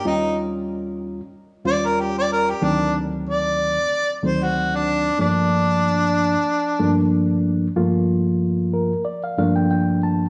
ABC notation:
X:1
M:4/4
L:1/16
Q:"Swing 16ths" 1/4=93
K:Gm
V:1 name="Harmonica"
E2 z8 d B G d B G | D2 z2 d6 c ^F2 D3 | D12 z4 | z16 |]
V:2 name="Reed electric piano"
z16 | z16 | z16 | z6 B2 d f f g g2 a2 |]
V:3 name="Reed electric piano"
[E,,G,_DF]6- [E,,G,DF] z3 [E,,G,DF]6 | [D,,E,^F,A,C]6- [D,,E,F,A,C] z3 [D,,E,F,A,C]6 | [G,,F,A,B,D]6- [G,,F,A,B,D] z3 [G,,F,A,B,D]6 | [G,,F,A,B,F]6- [G,,F,A,B,F] z3 [G,,F,A,B,D]6 |]